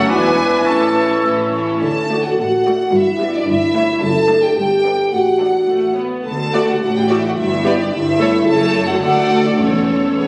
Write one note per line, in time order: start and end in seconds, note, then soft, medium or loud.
0.00 0.12 F#3 medium
0.00 0.12 C#4 medium
0.00 0.11 A4 medium
0.00 0.10 F#5 medium
0.00 0.10 C#6 medium
0.09 0.60 E1 medium
0.09 0.60 E2 medium
0.09 1.54 E3 medium
0.09 0.37 E3 medium
0.09 0.66 B3 medium
0.09 0.67 D4 medium
0.09 0.37 D4 medium
0.09 0.37 E4 medium
0.09 1.54 E4 medium
0.09 0.37 B4 medium
0.09 0.67 B4 medium
0.09 0.65 G#5 medium
0.09 0.68 D6 medium
0.38 0.66 E3 soft
0.38 0.66 D4 soft
0.38 0.64 E4 soft
0.38 0.66 B4 soft
0.65 1.18 A1 soft
0.65 1.17 A2 medium
0.65 0.94 E3 soft
0.65 1.54 A3 medium
0.65 0.94 C#4 soft
0.65 1.52 C#4 soft
0.65 0.94 E4 soft
0.65 1.53 A4 soft
0.65 0.95 A4 soft
0.65 1.25 A5 medium
0.65 1.19 C#6 soft
0.96 1.24 E3 soft
0.96 1.23 C#4 soft
0.96 1.23 E4 soft
0.96 1.23 A4 soft
1.23 1.76 A1 soft
1.23 1.75 A2 soft
1.23 1.53 E3 soft
1.23 1.53 C#4 soft
1.23 1.53 E4 soft
1.23 1.53 A4 soft
1.23 1.29 E6 soft
1.53 1.82 E3 soft
1.53 1.82 C#4 soft
1.53 1.82 E4 soft
1.53 1.82 A4 soft
1.53 1.59 C#6 soft
1.82 2.27 D2 medium
1.82 2.27 D3 medium
1.82 2.22 A4 medium
1.82 2.21 A5 medium
2.10 2.31 A3 soft
2.10 2.31 F#4 soft
2.10 2.32 D5 soft
2.24 2.39 F#4 medium
2.24 2.38 F#5 medium
2.38 2.82 A1 medium
2.38 2.82 A2 medium
2.38 2.93 F#4 medium
2.38 2.93 F#5 medium
2.65 2.87 A3 medium
2.65 2.87 F#4 soft
2.65 2.86 D5 medium
2.93 3.36 G1 medium
2.93 3.36 G2 medium
2.93 3.34 E4 medium
2.93 3.35 E5 medium
3.20 3.41 B3 medium
3.20 3.41 G4 medium
3.20 3.41 D5 medium
3.34 3.48 D4 medium
3.34 3.48 D5 medium
3.46 3.91 G1 medium
3.46 3.91 G2 medium
3.46 4.00 E4 medium
3.46 4.01 E5 medium
3.74 3.95 A3 medium
3.74 3.95 E4 medium
3.74 3.95 C#5 medium
4.01 4.45 F#1 medium
4.01 4.45 F#2 medium
4.01 4.43 A4 loud
4.01 4.42 A5 medium
4.29 4.49 A3 medium
4.29 4.49 D4 medium
4.29 4.50 D5 medium
4.42 4.55 G4 medium
4.42 4.56 G5 medium
4.56 5.01 G1 medium
4.56 5.01 G2 medium
4.56 5.11 G4 medium
4.56 5.11 G5 medium
4.84 5.05 B3 soft
4.84 5.05 D4 soft
4.84 5.05 D5 medium
5.11 5.57 A1 medium
5.11 5.57 A2 medium
5.11 5.97 F#4 medium
5.11 5.95 F#5 medium
5.40 5.61 A3 soft
5.40 5.61 D4 soft
5.40 5.61 D5 soft
5.68 6.13 A1 soft
5.68 6.14 A2 soft
5.68 5.95 A3 soft
5.96 6.25 B3 soft
5.96 6.18 C#5 soft
6.24 6.72 D2 soft
6.24 6.73 D2 medium
6.24 6.64 A4 medium
6.24 6.65 A5 medium
6.53 6.66 A3 soft
6.53 6.66 F#4 soft
6.53 6.67 D5 soft
6.68 6.74 F#4 medium
6.68 6.81 F#5 medium
6.79 7.28 A1 medium
6.79 7.28 A2 medium
6.79 6.94 F#4 medium
6.79 6.95 F#5 medium
6.95 7.09 G4 medium
6.95 7.10 G5 medium
7.09 7.23 A3 soft
7.09 7.23 E4 medium
7.09 7.22 F#4 soft
7.09 7.22 D5 soft
7.09 7.24 E5 medium
7.24 7.38 F#4 medium
7.24 7.30 F#5 medium
7.36 7.83 G1 medium
7.36 7.83 G2 medium
7.36 7.78 E4 medium
7.36 7.78 E5 medium
7.64 7.77 B3 medium
7.64 7.77 G4 medium
7.64 7.79 D5 medium
7.78 7.93 D4 medium
7.78 7.92 D5 medium
7.91 8.38 G1 medium
7.91 8.38 G2 medium
7.91 8.46 E4 medium
7.91 8.45 E5 medium
8.19 8.32 A3 medium
8.19 8.32 A4 medium
8.19 8.33 C#5 medium
8.46 8.98 F#1 medium
8.46 8.98 F#2 medium
8.46 8.98 A3 medium
8.46 8.53 A4 medium
8.46 8.98 A4 medium
8.46 8.87 A5 medium
8.50 9.00 C#5 medium
8.55 8.61 G#4 medium
8.60 8.88 A4 loud
8.87 9.01 F#4 medium
8.87 9.02 F#5 medium
9.01 9.59 D2 medium
9.01 9.57 A3 medium
9.01 9.44 F#4 medium
9.01 9.58 A4 medium
9.01 9.61 D5 medium
9.01 9.44 F#5 medium
9.44 9.59 D4 medium
9.44 9.59 D5 medium
9.57 10.28 E1 medium
9.57 10.28 E2 soft
9.57 10.13 E2 medium
9.57 10.15 A3 soft
9.57 10.28 C#4 medium
9.57 10.16 A4 soft
9.57 10.28 C#5 medium
9.57 10.15 C#5 soft
10.16 10.28 B3 soft
10.16 10.28 G#4 soft
10.16 10.28 C#5 soft